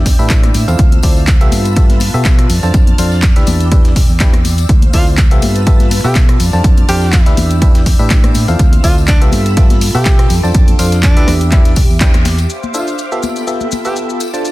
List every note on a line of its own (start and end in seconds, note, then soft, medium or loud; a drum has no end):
0.00 0.13 E2 medium
0.00 0.77 D5 medium
0.00 0.78 G5 medium
0.00 2.47 E6 medium
0.06 kick medium
0.06 snare medium
0.06 closed hi-hat medium
0.06 open hi-hat loud
0.06 tambourine loud
0.19 0.50 A2 medium
0.19 0.65 D4 medium
0.19 0.65 E4 medium
0.19 0.65 G4 medium
0.19 0.65 B4 medium
0.19 0.65 E5 loud
0.19 tambourine medium
0.30 kick loud
0.30 snare loud
0.30 clap loud
0.30 closed hi-hat medium
0.43 cross-stick medium
0.43 closed hi-hat medium
0.43 high conga medium
0.54 0.64 A2 loud
0.54 closed hi-hat medium
0.54 open hi-hat loud
0.54 tambourine loud
0.54 high conga medium
0.68 0.76 E2 medium
0.68 1.01 C4 medium
0.68 1.01 E4 medium
0.68 1.01 F4 medium
0.68 1.01 A4 medium
0.68 1.01 F5 medium
0.68 closed hi-hat soft
0.68 tambourine medium
0.78 0.98 D2 medium
0.78 1.52 C5 medium
0.78 1.51 F5 medium
0.78 kick loud
0.78 closed hi-hat medium
0.78 tambourine soft
0.92 closed hi-hat soft
0.92 high conga medium
1.03 1.41 D2 loud
1.03 1.24 C4 medium
1.03 1.24 E4 medium
1.03 1.24 F4 medium
1.03 1.24 A4 medium
1.03 1.24 D5 medium
1.03 kick medium
1.03 closed hi-hat medium
1.03 open hi-hat loud
1.03 tambourine medium
1.16 tambourine medium
1.27 kick loud
1.27 snare loud
1.27 clap loud
1.27 closed hi-hat medium
1.41 1.49 C2 loud
1.41 1.74 B3 medium
1.41 1.74 F4 medium
1.41 1.74 G4 medium
1.41 1.74 A4 medium
1.41 1.74 E5 loud
1.41 closed hi-hat medium
1.52 2.09 G2 medium
1.52 2.49 F4 medium
1.52 2.49 B4 medium
1.52 2.48 A5 medium
1.52 closed hi-hat medium
1.52 open hi-hat medium
1.52 tambourine medium
1.52 high conga medium
1.65 closed hi-hat soft
1.65 tambourine medium
1.76 1.97 B3 medium
1.76 1.97 F4 medium
1.76 1.97 G4 medium
1.76 1.97 A4 medium
1.76 1.97 E5 loud
1.76 kick loud
1.76 closed hi-hat medium
1.76 tambourine soft
1.90 snare soft
1.90 closed hi-hat soft
1.90 high conga medium
2.00 snare soft
2.00 closed hi-hat medium
2.00 open hi-hat loud
2.00 tambourine medium
2.00 high conga medium
2.14 2.45 B2 medium
2.14 2.48 B3 medium
2.14 2.48 F4 medium
2.14 2.48 G4 medium
2.14 2.48 A4 medium
2.14 2.48 E5 loud
2.14 tambourine medium
2.25 kick loud
2.25 snare loud
2.25 clap loud
2.25 closed hi-hat medium
2.25 tambourine soft
2.39 cross-stick medium
2.39 closed hi-hat medium
2.50 2.59 F2 loud
2.50 4.67 D5 medium
2.50 3.46 A5 medium
2.50 3.46 F6 medium
2.50 closed hi-hat medium
2.50 open hi-hat loud
2.50 tambourine medium
2.63 2.71 F2 medium
2.63 2.96 D4 medium
2.63 2.96 F4 medium
2.63 2.96 A4 medium
2.63 2.96 C5 medium
2.63 2.96 A5 medium
2.63 tambourine medium
2.74 kick loud
2.74 closed hi-hat medium
2.74 tambourine soft
2.87 closed hi-hat soft
2.87 high conga medium
2.98 3.36 F2 loud
2.98 3.19 D4 medium
2.98 3.19 F4 medium
2.98 3.19 A4 medium
2.98 3.19 C5 medium
2.98 3.19 F5 medium
2.98 closed hi-hat medium
2.98 open hi-hat loud
2.98 tambourine medium
3.12 snare soft
3.12 tambourine medium
3.22 kick loud
3.22 snare loud
3.22 clap loud
3.22 closed hi-hat medium
3.36 3.44 D2 medium
3.36 3.69 D4 medium
3.36 3.69 E4 medium
3.36 3.69 G4 medium
3.36 3.69 B4 medium
3.36 3.69 E5 loud
3.36 snare medium
3.36 closed hi-hat soft
3.47 3.95 E2 medium
3.47 4.68 G5 medium
3.47 4.68 E6 medium
3.47 closed hi-hat medium
3.47 open hi-hat medium
3.47 tambourine medium
3.47 high conga medium
3.60 closed hi-hat soft
3.60 tambourine medium
3.72 3.92 D4 medium
3.72 3.92 E4 medium
3.72 3.92 G4 medium
3.72 3.92 B4 medium
3.72 3.92 E5 medium
3.72 kick loud
3.72 closed hi-hat medium
3.72 tambourine soft
3.85 snare medium
3.85 closed hi-hat soft
3.96 4.06 E1 loud
3.96 kick medium
3.96 snare medium
3.96 closed hi-hat medium
3.96 open hi-hat loud
3.96 tambourine medium
4.09 4.65 E2 loud
4.09 tambourine medium
4.20 4.34 D4 medium
4.20 4.34 E4 medium
4.20 4.34 G4 medium
4.20 4.34 B4 medium
4.20 4.34 G5 loud
4.20 kick loud
4.20 snare loud
4.20 clap loud
4.20 closed hi-hat medium
4.33 cross-stick medium
4.33 closed hi-hat soft
4.33 high conga medium
4.45 closed hi-hat medium
4.45 open hi-hat medium
4.45 tambourine loud
4.45 high conga medium
4.58 closed hi-hat soft
4.58 tambourine medium
4.69 4.88 D2 medium
4.69 5.42 C5 medium
4.69 5.42 F5 medium
4.69 6.38 E6 medium
4.69 kick loud
4.69 closed hi-hat medium
4.82 closed hi-hat medium
4.82 high conga medium
4.93 5.31 D2 loud
4.93 5.14 C4 medium
4.93 5.14 E4 medium
4.93 5.07 F4 medium
4.93 5.14 F4 medium
4.93 5.14 A4 medium
4.93 5.14 D5 medium
4.93 kick medium
4.93 closed hi-hat medium
4.93 open hi-hat loud
4.93 tambourine medium
5.07 tambourine medium
5.18 kick loud
5.18 snare loud
5.18 clap loud
5.18 closed hi-hat medium
5.31 5.39 C2 loud
5.31 5.64 B3 medium
5.31 5.64 F4 medium
5.31 5.64 G4 medium
5.31 5.64 A4 medium
5.31 5.64 E5 loud
5.31 closed hi-hat soft
5.42 5.99 G2 medium
5.42 6.39 F4 medium
5.42 6.39 B4 medium
5.42 6.38 A5 medium
5.42 closed hi-hat medium
5.42 open hi-hat medium
5.42 tambourine medium
5.42 high conga medium
5.55 closed hi-hat soft
5.55 tambourine soft
5.67 5.87 B3 medium
5.67 5.88 F4 medium
5.67 5.87 G4 medium
5.67 5.87 A4 medium
5.67 5.88 E5 loud
5.67 kick loud
5.67 closed hi-hat medium
5.67 tambourine soft
5.80 snare soft
5.80 closed hi-hat soft
5.80 high conga medium
5.91 snare soft
5.91 closed hi-hat medium
5.91 open hi-hat loud
5.91 tambourine medium
5.91 high conga medium
6.04 6.35 B2 loud
6.04 6.39 B3 loud
6.04 6.39 F4 medium
6.04 6.15 G4 medium
6.04 6.39 G4 medium
6.04 6.39 A4 medium
6.04 6.39 E5 loud
6.04 tambourine medium
6.15 kick loud
6.15 snare loud
6.15 clap loud
6.15 closed hi-hat medium
6.15 tambourine soft
6.29 cross-stick medium
6.29 closed hi-hat soft
6.40 6.50 F2 medium
6.40 7.36 D5 medium
6.40 7.36 A5 medium
6.40 7.36 F6 medium
6.40 closed hi-hat medium
6.40 open hi-hat medium
6.40 tambourine medium
6.53 6.61 F2 medium
6.53 6.86 D4 medium
6.53 6.86 F4 medium
6.53 6.86 A4 medium
6.53 6.86 C5 medium
6.53 6.86 A5 medium
6.53 tambourine medium
6.64 kick loud
6.64 closed hi-hat medium
6.64 tambourine soft
6.78 closed hi-hat soft
6.78 high conga medium
6.88 7.26 F2 loud
6.88 7.09 D4 medium
6.88 7.09 F4 medium
6.88 7.26 G4 loud
6.88 7.09 A4 medium
6.88 7.09 C5 medium
6.88 7.09 F5 medium
6.88 closed hi-hat medium
6.88 open hi-hat loud
6.88 tambourine medium
7.02 snare soft
7.02 tambourine medium
7.13 kick loud
7.13 snare loud
7.13 clap loud
7.13 closed hi-hat medium
7.13 tambourine soft
7.26 7.35 D2 loud
7.26 7.59 D4 medium
7.26 7.59 E4 medium
7.26 7.59 G4 medium
7.26 7.59 B4 medium
7.26 7.59 E5 loud
7.26 snare medium
7.26 closed hi-hat medium
7.37 7.94 E2 medium
7.37 8.58 D5 medium
7.37 8.58 G5 medium
7.37 10.27 E6 medium
7.37 closed hi-hat medium
7.37 open hi-hat medium
7.37 tambourine medium
7.37 high conga medium
7.51 closed hi-hat soft
7.51 tambourine medium
7.62 7.83 D4 medium
7.62 7.83 E4 medium
7.62 7.83 G4 medium
7.62 7.83 B4 medium
7.62 7.83 E5 loud
7.62 kick loud
7.62 closed hi-hat medium
7.62 tambourine soft
7.75 snare medium
7.75 closed hi-hat soft
7.86 kick medium
7.86 snare medium
7.86 closed hi-hat medium
7.86 open hi-hat loud
7.86 tambourine medium
7.99 8.30 A2 loud
7.99 8.45 D4 loud
7.99 8.45 E4 medium
7.99 8.45 G4 medium
7.99 8.45 B4 medium
7.99 8.45 E5 loud
7.99 tambourine medium
8.10 kick loud
8.10 snare loud
8.10 clap loud
8.10 closed hi-hat medium
8.10 tambourine soft
8.24 cross-stick medium
8.24 closed hi-hat medium
8.24 high conga medium
8.34 8.45 A2 medium
8.34 closed hi-hat medium
8.34 open hi-hat medium
8.34 tambourine medium
8.34 high conga medium
8.48 8.57 E2 medium
8.48 8.81 C4 medium
8.48 8.81 E4 medium
8.48 8.81 F4 medium
8.48 8.81 A4 medium
8.48 8.81 F5 medium
8.48 closed hi-hat soft
8.48 tambourine soft
8.59 8.78 D2 medium
8.59 9.32 C5 medium
8.59 9.32 F5 medium
8.59 kick loud
8.59 closed hi-hat medium
8.59 tambourine soft
8.73 closed hi-hat medium
8.73 high conga medium
8.84 9.22 D2 loud
8.84 9.04 C4 medium
8.84 9.04 E4 medium
8.84 9.04 F4 medium
8.84 8.97 F4 medium
8.84 9.04 A4 medium
8.84 9.04 D5 medium
8.84 kick medium
8.84 closed hi-hat medium
8.84 open hi-hat loud
8.84 tambourine medium
8.98 tambourine soft
9.08 9.21 D4 medium
9.08 kick loud
9.08 snare loud
9.08 clap loud
9.08 closed hi-hat medium
9.21 9.30 C2 loud
9.21 9.54 B3 medium
9.21 9.54 F4 medium
9.21 9.54 G4 medium
9.21 9.54 A4 medium
9.21 9.54 E5 loud
9.21 closed hi-hat medium
9.32 9.89 G2 medium
9.32 11.26 F4 medium
9.32 11.26 A4 medium
9.32 10.29 B5 medium
9.32 closed hi-hat medium
9.32 open hi-hat medium
9.32 tambourine medium
9.32 high conga medium
9.46 closed hi-hat soft
9.46 tambourine soft
9.57 9.78 B3 medium
9.57 9.78 F4 medium
9.57 9.78 G4 medium
9.57 9.78 A4 medium
9.57 9.78 E5 loud
9.57 kick loud
9.57 closed hi-hat medium
9.70 snare soft
9.70 closed hi-hat soft
9.70 high conga medium
9.81 snare soft
9.81 closed hi-hat medium
9.81 open hi-hat loud
9.81 tambourine medium
9.81 high conga medium
9.95 10.25 B2 loud
9.95 10.29 B3 medium
9.95 10.29 F4 medium
9.95 10.29 G4 medium
9.95 10.36 G4 loud
9.95 10.29 A4 medium
9.95 10.29 E5 loud
9.95 tambourine medium
10.05 kick loud
10.05 snare loud
10.05 clap loud
10.05 closed hi-hat medium
10.19 cross-stick medium
10.19 closed hi-hat medium
10.30 10.40 F2 loud
10.30 12.47 D6 medium
10.30 closed hi-hat medium
10.30 open hi-hat medium
10.30 tambourine medium
10.43 10.52 F2 medium
10.43 10.76 D4 medium
10.43 10.76 F4 medium
10.43 10.76 A4 medium
10.43 10.76 C5 medium
10.43 10.76 A5 medium
10.43 tambourine soft
10.55 10.73 F2 loud
10.55 kick loud
10.55 closed hi-hat medium
10.55 tambourine soft
10.68 closed hi-hat medium
10.68 high conga medium
10.79 11.17 F2 loud
10.79 11.00 D4 medium
10.79 11.00 F4 medium
10.79 11.00 A4 medium
10.79 11.00 C5 medium
10.79 11.00 F5 medium
10.79 closed hi-hat medium
10.79 open hi-hat loud
10.79 tambourine medium
10.92 snare soft
10.92 closed hi-hat soft
10.92 tambourine medium
11.03 11.33 D4 medium
11.03 kick loud
11.03 snare loud
11.03 clap loud
11.03 closed hi-hat medium
11.03 tambourine soft
11.17 11.25 D2 loud
11.17 11.50 D4 medium
11.17 11.50 E4 medium
11.17 11.50 G4 medium
11.17 11.50 B4 medium
11.17 11.50 E5 loud
11.17 snare medium
11.17 closed hi-hat medium
11.28 11.76 E2 medium
11.28 12.49 G4 medium
11.28 12.49 E5 medium
11.28 cross-stick medium
11.28 closed hi-hat medium
11.28 open hi-hat medium
11.28 tambourine medium
11.28 high conga loud
11.41 closed hi-hat soft
11.41 tambourine soft
11.52 11.73 D4 medium
11.52 11.73 E4 medium
11.52 11.73 G4 medium
11.52 11.73 B4 medium
11.52 11.73 E5 loud
11.52 kick loud
11.52 clap medium
11.52 closed hi-hat medium
11.52 tambourine soft
11.65 snare soft
11.65 closed hi-hat medium
11.76 11.86 E1 loud
11.76 kick medium
11.76 open hi-hat loud
11.76 tambourine medium
11.90 12.45 E2 medium
11.90 tambourine soft
12.00 12.15 D4 medium
12.00 12.15 E4 medium
12.00 12.15 G4 medium
12.00 12.15 B4 medium
12.00 12.15 G5 loud
12.00 kick loud
12.00 snare loud
12.00 clap loud
12.00 closed hi-hat medium
12.14 cross-stick medium
12.14 closed hi-hat medium
12.14 high conga medium
12.25 snare loud
12.25 closed hi-hat medium
12.25 open hi-hat medium
12.25 tambourine medium
12.25 high conga medium
12.38 closed hi-hat soft
12.38 tambourine medium
12.49 13.22 C5 medium
12.49 13.22 E5 medium
12.49 13.22 F5 medium
12.49 13.22 D6 medium
12.49 closed hi-hat medium
12.49 tambourine soft
12.49 shaker soft
12.63 high conga medium
12.63 shaker soft
12.74 12.95 D4 medium
12.74 12.87 F4 medium
12.74 12.95 F4 medium
12.74 12.95 A4 medium
12.74 12.95 C5 medium
12.74 12.95 E5 medium
12.74 tambourine medium
12.74 shaker medium
12.87 tambourine soft
12.87 shaker soft
12.98 closed hi-hat medium
12.98 tambourine soft
12.98 shaker soft
13.12 13.45 B3 medium
13.12 13.45 F4 medium
13.12 13.45 G4 medium
13.12 13.45 A4 medium
13.12 13.45 E5 medium
13.12 shaker soft
13.23 14.52 F4 medium
13.23 14.52 A4 medium
13.23 14.19 E5 medium
13.23 14.19 G5 medium
13.23 14.19 B5 medium
13.23 tambourine medium
13.23 high conga medium
13.23 shaker medium
13.36 tambourine soft
13.36 shaker soft
13.47 13.68 B3 medium
13.47 13.68 F4 medium
13.47 13.68 G4 medium
13.47 13.68 A4 medium
13.47 13.68 E5 medium
13.47 closed hi-hat medium
13.47 tambourine soft
13.47 shaker soft
13.61 snare soft
13.61 high conga medium
13.61 shaker soft
13.72 snare soft
13.72 closed hi-hat medium
13.72 tambourine medium
13.72 high conga medium
13.72 shaker medium
13.85 14.19 B3 medium
13.85 14.19 F4 medium
13.85 13.96 G4 medium
13.85 14.19 G4 medium
13.85 14.19 A4 medium
13.85 14.19 E5 loud
13.85 tambourine soft
13.85 shaker soft
13.96 closed hi-hat medium
13.96 tambourine soft
13.96 shaker soft
14.09 shaker soft
14.20 14.52 D6 medium
14.20 closed hi-hat medium
14.20 tambourine medium
14.20 shaker medium
14.34 14.52 D4 medium
14.34 14.52 F4 medium
14.34 14.52 A4 medium
14.34 14.52 C5 medium
14.34 14.52 A5 medium
14.34 tambourine medium
14.34 shaker soft
14.45 closed hi-hat medium
14.45 tambourine soft
14.45 shaker soft